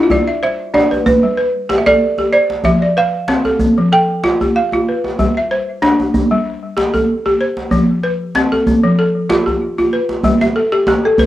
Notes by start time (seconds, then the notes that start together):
0.03 F4
0.10 G3 D5, djembe slap, djembe bass
0.27 E5
0.43 C5 E5
0.74 D4 D5, djembe slap
0.91 B4, djembe tone
1.06 B4, djembe bass
1.23 G3, djembe slap
1.37 B4, djembe slap
1.69 G4, djembe slap
1.78 E5
1.86 A4 D5, djembe bass
2.18 G4, djembe tone
2.33 C5 D5
2.50 djembe slap
2.64 F3 E5, djembe slap, djembe bass
2.82 D5
2.97 B4 F5
3.28 C4, djembe slap
3.45 A4, djembe tone
3.60 djembe bass
3.77 F3, djembe slap
3.92 A4 G5, djembe slap
4.24 F4, djembe slap
4.41 G4, djembe bass
4.56 F5
4.73 F4, djembe tone
4.89 B4
5.04 djembe slap
5.19 G3, djembe slap, djembe bass
5.37 E5
5.51 C5
5.82 D4, djembe slap
6.00 djembe tone
6.14 djembe bass
6.31 G3, djembe slap
6.46 djembe slap
6.77 G4, djembe slap
6.94 A4, djembe bass
7.26 G4, djembe tone
7.41 C5
7.57 djembe slap
7.71 F3, djembe bass
7.89 djembe slap
8.04 B4
8.35 C4, djembe slap
8.52 A4, djembe tone
8.67 djembe bass
8.83 F3
8.99 A4
9.29 F4, djembe slap
9.46 G4, djembe slap, djembe bass
9.61 djembe slap
9.78 F4, djembe tone
9.93 B4, djembe slap
10.09 djembe slap
10.23 G3, djembe bass
10.41 E5, djembe slap, djembe tone
10.56 A4
10.72 G4, djembe slap
10.87 G4, djembe slap, djembe tone
11.05 A4
11.18 B4, djembe bass